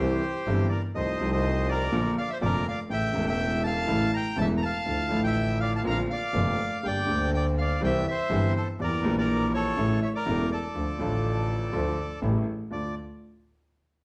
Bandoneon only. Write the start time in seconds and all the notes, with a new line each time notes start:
Already playing: C5
0.00 G4
0.69 A#4 D5
0.95 C5 D#5
1.32 C5 D#5
1.69 A#4 D5
2.18 D5 F5
2.30 C5 E5
2.42 A#4 D5
2.68 D5 F5
2.91 E5 G5
3.26 E5 G5
3.64 F5 A5
4.14 G5 A#5
4.38 E5 A5
4.58 A#5
4.63 F5 A5
5.24 E5 G5
5.60 D5 F5
5.76 F5 A5
5.87 F5 A#5
6.11 D5 F5
6.85 D5 G5
7.34 D5 G5
7.58 D5 F5
7.84 E5 G5
8.08 C5 E5
8.56 A4 C5
8.81 A#4 D5
9.18 A#4 D5
9.54 A4 C#5
10.03 C#5 E5
10.15 A#4 D5
10.52 A4 D5
12.72 D5